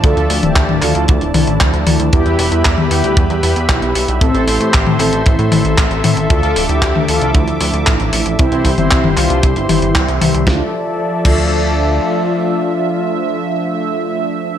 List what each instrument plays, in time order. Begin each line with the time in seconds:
Already playing: analog synth pad F3 D5 A5
0.04 analog synth bass D2, analog polysynth F3 A3 D4 F4 A4 E5, kick, closed hi-hat
0.17 analog synth bass D2, closed hi-hat
0.30 analog synth bass D2, open hi-hat
0.43 analog synth bass D1, analog polysynth E4 G4, closed hi-hat, high tom
0.56 analog synth bass D2, kick, clap, closed hi-hat
0.69 analog synth bass D1, high tom
0.82 analog synth bass D2, analog polysynth F3 A3 D4 E4 F4 A4, clap, open hi-hat
0.95 analog synth bass D2, closed hi-hat
1.08 analog synth bass D2, kick, closed hi-hat
1.21 analog synth bass D1, closed hi-hat
1.34 analog synth bass C2, analog polysynth F3 A3 D4 E4, open hi-hat, high tom
1.47 analog synth bass A1, closed hi-hat
1.60 analog synth bass D2, kick, clap, closed hi-hat
1.73 analog synth bass D2, closed hi-hat
1.86 analog synth bass D2, analog polysynth F3 A3 D4 E4, open hi-hat, high tom
1.99 analog synth bass D2, closed hi-hat
2.13 analog synth bass E2, analog polysynth G3 B3 E4 G4, analog synth pad G4 B4 E5 B5, kick, closed hi-hat
2.26 analog synth bass E2, closed hi-hat
2.39 analog synth bass E1, open hi-hat
2.52 analog synth bass E2, analog polysynth G3 E4, closed hi-hat
2.65 analog synth bass E2, kick, clap, closed hi-hat
2.78 analog synth bass E2, high tom
2.91 analog synth bass E2, analog polysynth G3 B3 E4 G4, open hi-hat
3.04 analog synth bass D2, closed hi-hat
3.17 analog synth bass E2, kick, closed hi-hat
3.30 analog synth bass E2, closed hi-hat
3.43 analog synth bass E2, analog polysynth G3 B3 E4 G4, open hi-hat
3.56 analog synth bass E2, closed hi-hat
3.69 analog synth bass B1, kick, clap, closed hi-hat
3.82 analog synth bass B1, closed hi-hat
3.95 analog synth bass B1, analog polysynth G3 B3 E4 G4, open hi-hat
4.08 analog synth bass B1, closed hi-hat
4.21 analog synth bass A1, analog polysynth E3 A3 C4 E4 A4, analog synth pad A4 C5 C6, kick, closed hi-hat
4.34 analog synth bass A1, closed hi-hat
4.47 analog synth bass A1, open hi-hat
4.60 analog synth bass A2, analog polysynth E4 G4, closed hi-hat
4.74 analog synth bass A1, kick, clap, closed hi-hat
4.87 analog synth bass A2, high tom
5.00 analog synth bass A1, analog polysynth E3 A3 C4 E4 A4, clap, open hi-hat
5.13 analog synth bass A1, closed hi-hat
5.26 analog synth bass A1, kick, closed hi-hat
5.39 analog synth bass A2, closed hi-hat
5.52 analog synth bass A1, analog polysynth E3 A3 C4 E4, open hi-hat, high tom
5.65 analog synth bass A1, closed hi-hat
5.78 analog synth bass A1, kick, clap, closed hi-hat
5.91 analog synth bass A1, closed hi-hat
6.04 analog synth bass A2, analog polysynth E3 A3 C4 E4, open hi-hat, high tom
6.17 analog synth bass A1, closed hi-hat
6.30 analog synth bass D2, analog polysynth F3 A3 D4 F4 A4 E5, analog synth pad D6, kick, closed hi-hat
6.43 analog synth bass D2, closed hi-hat
6.56 analog synth bass D1, open hi-hat
6.69 analog synth bass D2, analog polysynth E4 G4, closed hi-hat
6.82 analog synth bass D2, kick, clap, closed hi-hat
6.95 analog synth bass D2, high tom
7.08 analog synth bass D2, analog polysynth F3 A3 D4 E4 F4 A4, open hi-hat
7.21 analog synth bass C2, closed hi-hat
7.34 analog synth bass D2, kick, closed hi-hat
7.47 analog synth bass D2, closed hi-hat
7.60 analog synth bass D2, analog polysynth F3 A3 D4 E4, open hi-hat
7.73 analog synth bass D2, closed hi-hat
7.87 analog synth bass A1, kick, clap, closed hi-hat
8.00 analog synth bass A1, closed hi-hat
8.12 analog synth bass A1, analog polysynth F3 A3 D4 E4, open hi-hat
8.26 analog synth bass A1, closed hi-hat
8.39 analog synth bass C2, analog polysynth E3 G3 C4 E4, analog synth pad G4 C5 C6, kick, closed hi-hat
8.52 analog synth bass C2, closed hi-hat
8.65 analog synth bass C2, kick, open hi-hat
8.78 analog synth bass G1, analog polysynth C4 E4, closed hi-hat, high tom
8.91 analog synth bass C2, kick, clap, closed hi-hat
9.04 analog synth bass G1, high tom
9.17 analog synth bass C2, analog polysynth E3 G3 C4 D4 E4 F4, clap, open hi-hat
9.30 analog synth bass C2, closed hi-hat
9.43 analog synth bass C2, kick, closed hi-hat
9.56 analog synth bass G1, closed hi-hat
9.69 analog synth bass G1, analog polysynth E3 G3 C4 E4, open hi-hat, high tom
9.82 analog synth bass G1, closed hi-hat
9.95 analog synth bass C2, kick, clap, closed hi-hat
10.08 analog synth bass C2, closed hi-hat
10.21 analog synth bass C2, analog polysynth E3 G3 C4 E4, open hi-hat, high tom
10.34 analog synth bass C2, closed hi-hat
10.47 analog synth bass D2, analog synth pad F3 A4 D5 E5 A5, analog polysynth F3 A3 D4 E4 F4, kick, snare
11.25 analog synth bass D2, analog polysynth F3 A3 D4 F4 E5, kick, crash